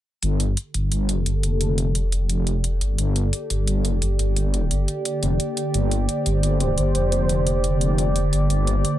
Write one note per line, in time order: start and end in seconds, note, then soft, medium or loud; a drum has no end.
0.23 0.56 G1 loud
0.23 8.99 D3 medium
0.23 8.99 A#3 medium
0.23 8.99 G4 medium
0.23 5.72 A4 medium
0.23 closed hi-hat medium
0.40 closed hi-hat medium
0.57 closed hi-hat medium
0.72 1.25 G1 medium
0.72 8.99 D5 medium
0.72 closed hi-hat medium
0.92 closed hi-hat medium
1.09 closed hi-hat medium
1.26 1.42 G1 medium
1.26 closed hi-hat medium
1.43 2.80 F1 medium
1.43 closed hi-hat medium
1.61 closed hi-hat medium
1.78 closed hi-hat medium
1.95 closed hi-hat medium
2.12 closed hi-hat medium
2.30 closed hi-hat medium
2.47 closed hi-hat medium
2.64 closed hi-hat medium
2.81 2.97 G1 medium
2.81 closed hi-hat medium
2.98 3.32 G1 medium
2.98 closed hi-hat medium
3.16 closed hi-hat medium
3.33 closed hi-hat medium
3.50 4.01 G1 medium
3.50 closed hi-hat medium
3.67 closed hi-hat medium
3.85 closed hi-hat medium
4.02 4.18 G1 medium
4.02 closed hi-hat medium
4.19 4.70 G1 medium
4.19 closed hi-hat medium
4.36 closed hi-hat medium
4.54 closed hi-hat medium
4.71 4.87 G1 medium
4.71 closed hi-hat medium
4.88 closed hi-hat medium
5.05 closed hi-hat medium
5.23 5.38 F1 medium
5.23 closed hi-hat medium
5.40 closed hi-hat medium
5.57 closed hi-hat medium
5.74 6.07 G1 loud
5.74 8.99 C5 medium
5.74 closed hi-hat medium
5.91 closed hi-hat medium
6.09 closed hi-hat medium
6.26 6.76 G1 medium
6.26 closed hi-hat medium
6.43 closed hi-hat medium
6.60 closed hi-hat medium
6.78 6.94 G1 medium
6.78 closed hi-hat medium
6.95 8.32 F1 loud
6.95 closed hi-hat medium
7.12 closed hi-hat medium
7.29 closed hi-hat medium
7.47 closed hi-hat medium
7.64 closed hi-hat medium
7.81 closed hi-hat medium
7.98 closed hi-hat medium
8.16 closed hi-hat medium
8.33 8.49 G1 medium
8.33 closed hi-hat medium
8.50 8.83 G1 loud
8.50 closed hi-hat medium
8.67 closed hi-hat medium
8.85 closed hi-hat medium